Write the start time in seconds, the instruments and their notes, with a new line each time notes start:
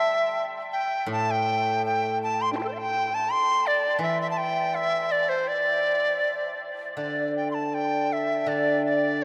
Already playing: guzheng G3, dizi E5
0.72 dizi G5
1.06 guzheng A2
1.12 dizi A5
1.31 dizi G5
1.86 dizi G5
2.23 dizi A5
2.42 dizi C6
2.53 dizi D4 C6
2.58 dizi E4 A5
2.64 dizi A4
2.68 dizi C5 D5
2.75 dizi E5 G5
3.14 dizi A5
3.32 dizi C6
3.67 dizi D5
3.99 guzheng E3, dizi E5
4.21 dizi E5
4.31 dizi A5
4.38 dizi G5
4.75 dizi E5
5.12 dizi D5
5.29 dizi C5
5.48 dizi D5
6.97 guzheng D3, dizi D5
7.36 dizi G5
7.51 dizi A5 C6
7.74 dizi G5
8.13 dizi E5
8.46 guzheng D3, dizi D5
8.86 dizi D5